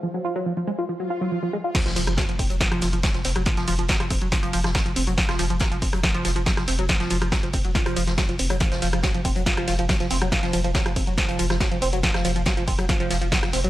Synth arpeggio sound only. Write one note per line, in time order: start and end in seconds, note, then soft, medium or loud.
0.03 0.07 F3 medium
0.14 0.24 F#3 medium
0.25 0.35 F4 medium
0.36 0.45 F#3 loud
0.46 0.53 F3 medium
0.57 0.63 F3 medium
0.67 0.72 G#3 loud
0.79 0.85 F4 medium
0.89 0.93 F3 medium
1.00 1.09 F#3 medium
1.10 1.20 F4 medium
1.21 1.31 F#3 medium
1.32 1.38 F3 medium
1.43 1.49 F3 medium
1.53 1.57 G#3 loud
1.64 1.71 F4 medium
1.75 1.85 F3 medium
1.86 1.95 F3 loud
1.96 2.03 F3 loud
2.07 2.13 F3 medium
2.18 2.24 F#3 medium
2.29 2.35 F3 medium
2.39 2.46 C4 medium
2.50 2.56 F#3 medium
2.61 2.70 F3 medium
2.71 2.81 F3 loud
2.82 2.89 F3 loud
2.93 2.99 F3 medium
3.04 3.10 F#3 medium
3.15 3.21 F3 medium
3.25 3.31 C4 medium
3.36 3.42 F#3 medium
3.46 3.56 F3 medium
3.57 3.67 F3 loud
3.68 3.74 F3 loud
3.79 3.85 F3 medium
3.89 3.96 F#3 medium
4.00 4.06 F3 medium
4.11 4.17 C4 medium
4.22 4.28 F#3 medium
4.32 4.42 F3 medium
4.43 4.52 F3 loud
4.53 4.60 F3 loud
4.64 4.71 F3 medium
4.75 4.81 F#3 medium
4.86 4.92 F3 medium
4.96 5.03 C4 medium
5.07 5.13 F#3 medium
5.18 5.27 F3 medium
5.29 5.38 F3 loud
5.39 5.46 F3 loud
5.50 5.56 F3 medium
5.60 5.67 F#3 medium
5.71 5.78 F3 medium
5.82 5.89 C4 medium
5.93 5.99 F#3 medium
6.03 6.13 F3 medium
6.14 6.24 F3 loud
6.25 6.31 F3 loud
6.36 6.42 F3 medium
6.46 6.53 F#3 medium
6.57 6.64 F3 medium
6.68 6.74 C4 medium
6.79 6.85 F#3 medium
6.89 6.99 F3 medium
7.00 7.09 F3 loud
7.10 7.17 F3 loud
7.22 7.28 F3 medium
7.32 7.39 F#3 medium
7.43 7.49 F3 medium
7.54 7.60 C4 medium
7.65 7.71 F#3 medium
7.75 7.85 F3 medium
7.86 7.95 F3 loud
7.96 8.03 F3 loud
8.07 8.14 F3 medium
8.18 8.24 F#3 medium
8.29 8.35 F3 medium
8.39 8.46 C4 medium
8.50 8.56 F#3 medium
8.61 8.70 F3 medium
8.72 8.81 F3 loud
8.82 8.89 F3 loud
8.93 8.99 F3 medium
9.04 9.10 F#3 medium
9.14 9.21 F3 medium
9.25 9.31 C4 medium
9.36 9.42 F#3 medium
9.46 9.56 F3 medium
9.57 9.67 F3 loud
9.68 9.74 F3 loud
9.79 9.85 F3 medium
9.89 9.96 F#3 medium
10.00 10.06 F3 medium
10.11 10.17 C4 medium
10.22 10.28 F#3 medium
10.32 10.42 F3 medium
10.43 10.52 F3 loud
10.53 10.60 F3 loud
10.64 10.71 F3 medium
10.75 10.81 F#3 medium
10.86 10.92 F3 medium
10.96 11.03 C4 medium
11.07 11.13 F#3 medium
11.18 11.27 F3 medium
11.29 11.38 F3 loud
11.39 11.46 F3 loud
11.50 11.56 F3 medium
11.60 11.67 F#3 medium
11.71 11.78 F3 medium
11.82 11.88 C4 medium
11.93 11.99 F#3 medium
12.03 12.13 F3 medium
12.14 12.24 F3 loud
12.25 12.31 F3 loud
12.36 12.42 F3 medium
12.46 12.53 F#3 medium
12.57 12.63 F3 medium
12.68 12.74 C4 medium
12.79 12.85 F#3 medium
12.89 12.99 F3 medium
13.00 13.09 F3 loud
13.10 13.17 F3 loud
13.21 13.28 F3 medium
13.32 13.38 F#3 medium
13.43 13.49 F3 medium
13.53 13.60 C4 medium
13.64 13.70 F#3 medium